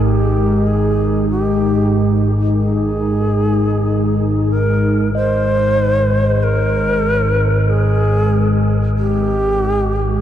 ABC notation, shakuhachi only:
X:1
M:4/4
L:1/8
Q:1/4=47
K:Ab
V:1 name="Shakuhachi"
G A G2 A3 B | c2 B2 A2 G2 |]